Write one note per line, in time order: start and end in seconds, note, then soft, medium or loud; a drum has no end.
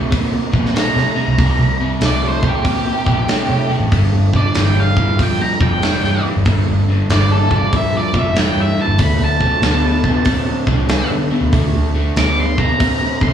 0.00 0.32 C2 medium
0.10 0.49 C3 medium
0.10 0.49 A#3 medium
0.10 kick loud
0.10 open hi-hat medium
0.51 0.88 A#1 medium
0.51 0.73 C3 medium
0.51 0.73 A#3 medium
0.51 kick medium
0.66 snare soft
0.74 1.12 C3 medium
0.74 1.12 A3 loud
0.74 snare loud
0.74 open hi-hat medium
0.79 2.00 A#5 loud
0.96 1.13 C3 medium
0.96 snare soft
1.16 1.36 C3 medium
1.16 1.37 A3 medium
1.28 1.37 C2 medium
1.38 1.55 C2 medium
1.38 1.76 C3 medium
1.38 1.76 G3 medium
1.38 kick loud
1.38 open hi-hat soft
1.59 1.94 C2 medium
1.80 2.00 C3 medium
1.80 2.00 G3 medium
2.01 2.85 C2 medium
2.01 2.40 C3 medium
2.01 2.40 A3 medium
2.01 snare loud
2.01 open hi-hat medium
2.05 2.24 D5 medium
2.28 2.46 C5 medium
2.43 2.63 C3 medium
2.43 2.64 A3 medium
2.43 kick medium
2.48 3.69 G4 medium
2.65 3.03 C3 medium
2.65 3.03 A#3 medium
2.65 kick loud
2.65 open hi-hat medium
3.06 3.41 A#1 medium
3.06 3.27 C3 medium
3.06 3.27 A#3 medium
3.06 kick medium
3.28 3.66 C3 medium
3.28 3.66 A3 medium
3.28 snare loud
3.28 open hi-hat medium
3.49 3.66 C3 medium
3.69 3.90 C3 medium
3.69 3.90 A3 medium
3.80 3.89 A1 medium
3.92 4.09 G1 medium
3.92 4.29 G2 medium
3.92 4.29 D3 medium
3.92 kick loud
3.92 open hi-hat medium
4.13 4.47 G1 medium
4.33 4.54 G2 medium
4.33 4.54 D3 medium
4.33 4.56 D5 medium
4.33 kick medium
4.55 5.40 G1 medium
4.55 4.93 G2 medium
4.55 4.94 E3 medium
4.55 snare loud
4.55 open hi-hat medium
4.59 4.78 G5 medium
4.80 5.19 F5 medium
4.97 5.17 G2 medium
4.97 5.17 E3 medium
4.97 kick medium
5.19 5.57 G2 medium
5.19 5.57 F3 medium
5.19 5.41 G5 medium
5.19 kick loud
5.19 open hi-hat medium
5.41 5.61 A#5 medium
5.60 5.95 F1 medium
5.60 5.80 G2 medium
5.60 5.81 F3 medium
5.60 6.23 G5 loud
5.60 kick medium
5.82 6.20 G2 medium
5.82 6.20 E3 loud
5.82 snare loud
5.82 open hi-hat medium
6.03 6.20 G2 medium
6.03 snare soft
6.25 6.44 G2 medium
6.25 6.44 E3 medium
6.36 6.44 G1 medium
6.45 6.62 G1 medium
6.45 6.83 G2 medium
6.45 6.84 D3 medium
6.45 kick loud
6.45 open hi-hat soft
6.69 7.02 G1 medium
6.88 7.08 G2 medium
6.88 7.08 D3 medium
7.09 7.93 G1 loud
7.09 7.47 G2 medium
7.09 7.47 E3 medium
7.09 7.31 D5 medium
7.09 snare loud
7.09 open hi-hat soft
7.32 7.51 A4 medium
7.51 7.71 G2 medium
7.51 7.71 E3 medium
7.51 7.74 D5 medium
7.51 kick medium
7.73 8.10 G2 medium
7.73 8.10 F3 medium
7.73 7.95 E5 medium
7.73 kick loud
7.73 open hi-hat medium
7.97 8.16 D5 medium
8.13 8.48 F1 loud
8.13 8.34 G2 medium
8.13 8.34 F3 medium
8.13 kick medium
8.18 8.37 E5 medium
8.36 8.74 G2 medium
8.36 8.74 E3 medium
8.36 8.58 G5 medium
8.36 snare loud
8.36 open hi-hat medium
8.57 8.73 G2 medium
8.61 8.80 E5 medium
8.78 8.97 G2 medium
8.78 8.98 E3 medium
8.78 9.00 A5 medium
8.88 8.97 G1 medium
8.98 9.15 D2 medium
8.98 9.36 D3 medium
8.98 9.37 A3 loud
8.98 9.21 B5 medium
8.98 kick loud
8.98 open hi-hat medium
9.20 9.54 D2 medium
9.25 11.09 A5 medium
9.40 9.60 D3 medium
9.40 9.60 A3 medium
9.40 kick medium
9.62 10.46 D2 loud
9.62 10.00 D3 medium
9.62 10.00 B3 medium
9.62 snare loud
9.62 open hi-hat medium
10.04 10.24 D3 medium
10.04 10.25 B3 medium
10.04 kick medium
10.25 10.63 D3 medium
10.25 10.64 C4 medium
10.25 kick loud
10.25 open hi-hat medium
10.67 11.02 C2 loud
10.67 10.87 D3 medium
10.67 10.88 C4 medium
10.67 kick medium
10.89 11.27 D3 medium
10.89 11.27 B3 medium
10.89 snare loud
10.89 open hi-hat medium
11.11 11.27 D3 medium
11.31 11.51 D3 medium
11.31 11.51 B3 medium
11.41 11.50 D2 medium
11.52 11.69 D2 medium
11.52 11.90 D3 medium
11.52 11.90 A3 medium
11.52 kick medium
11.52 open hi-hat soft
11.76 12.09 D2 medium
11.94 12.14 D3 medium
11.94 12.14 A3 medium
12.16 13.00 D2 medium
12.16 12.54 D3 medium
12.16 12.54 B3 medium
12.16 12.38 D6 loud
12.16 snare loud
12.16 open hi-hat medium
12.40 12.59 C6 medium
12.58 12.78 D3 medium
12.58 12.79 B3 medium
12.58 13.21 A#5 loud
12.58 kick medium
12.80 13.17 D3 medium
12.80 13.17 C4 medium
12.80 kick loud
12.80 open hi-hat medium
13.21 13.33 C2 medium
13.21 13.33 D3 medium
13.21 13.33 C4 medium
13.21 13.33 C6 medium
13.21 kick medium